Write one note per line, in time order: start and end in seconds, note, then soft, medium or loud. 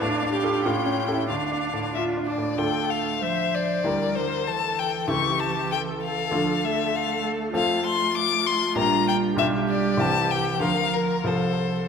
0.00 0.63 A2 soft
0.00 0.61 D4 medium
0.00 0.32 D4 medium
0.00 0.61 F5 soft
0.22 0.56 D4 soft
0.33 0.67 G4 medium
0.44 0.63 F4 soft
0.44 0.63 A4 soft
0.64 1.28 A2 soft
0.64 1.26 C#4 soft
0.64 1.13 F4 medium
0.64 1.25 G5 soft
0.86 1.21 C#4 soft
1.08 1.27 G4 soft
1.08 1.28 A4 soft
1.14 1.29 E4 soft
1.29 2.55 D2 soft
1.29 2.25 D4 medium
1.29 1.84 D4 soft
1.29 1.91 F5 soft
1.52 1.86 D4 soft
1.73 2.08 A2 soft
1.95 2.28 F4 soft
1.95 2.29 F4 soft
1.95 2.03 E5 medium
2.17 2.51 D4 soft
2.26 2.58 D4 soft
2.26 2.60 D5 soft
2.38 2.59 A2 soft
2.57 3.81 D2 soft
2.57 3.24 A3 soft
2.57 3.81 D4 soft
2.57 3.81 F4 soft
2.57 3.81 A4 soft
2.57 3.18 A4 soft
2.57 2.92 G5 medium
2.91 3.25 F5 soft
3.23 3.85 F3 soft
3.23 3.87 C5 soft
3.23 3.57 E5 medium
3.55 4.17 D5 soft
3.83 5.05 D2 soft
3.83 4.19 G3 soft
3.83 5.05 E4 soft
3.83 5.05 G4 soft
3.83 5.06 A#4 soft
3.83 4.49 A#4 soft
4.16 4.49 D3 soft
4.16 4.49 C5 medium
4.47 6.35 E3 soft
4.47 5.09 A4 soft
4.47 4.81 A5 medium
4.79 5.10 G5 soft
5.08 6.28 C#2 soft
5.08 6.29 E4 soft
5.08 6.29 G4 soft
5.08 5.74 G4 soft
5.08 6.29 A4 soft
5.08 5.41 C#6 medium
5.40 5.71 A5 medium
5.72 6.94 A4 soft
5.72 5.80 G5 medium
6.04 6.66 F5 medium
6.31 7.51 D2 soft
6.31 6.64 F3 soft
6.31 7.51 D4 soft
6.31 7.51 F4 soft
6.31 7.51 A4 soft
6.63 8.78 A3 soft
6.63 6.97 E5 medium
6.94 7.54 A4 soft
6.94 7.26 F5 medium
7.53 8.72 F2 soft
7.53 8.72 C4 soft
7.53 8.73 F4 soft
7.53 9.34 F4 soft
7.53 8.73 A4 soft
7.53 7.84 F5 medium
7.86 8.16 C6 medium
8.17 8.49 D6 medium
8.47 8.77 C6 medium
8.75 9.36 A#1 soft
8.75 9.38 G3 soft
8.75 9.35 D4 soft
8.75 9.36 G4 soft
8.75 9.36 A#4 soft
8.75 9.07 A#5 medium
9.08 9.16 G5 medium
9.36 9.97 B1 soft
9.36 10.01 G3 soft
9.36 9.97 D4 soft
9.36 9.98 F4 soft
9.36 10.63 G4 medium
9.36 9.98 G4 soft
9.36 9.47 E5 medium
9.69 10.02 D5 medium
9.97 10.59 C2 soft
9.97 10.61 E3 soft
9.97 10.60 C4 soft
9.97 10.60 E4 soft
9.97 10.60 G4 soft
9.97 10.33 A5 medium
10.31 10.61 G5 medium
10.60 11.24 D2 soft
10.60 11.23 F3 soft
10.60 11.25 F3 soft
10.60 11.23 F4 soft
10.60 11.24 A#4 soft
10.60 11.28 A#4 soft
10.60 10.96 F5 medium
10.94 11.29 A#4 medium
11.24 11.87 C2 soft
11.24 11.88 F3 soft
11.24 11.88 F4 soft
11.24 11.88 A4 soft
11.24 11.88 C5 soft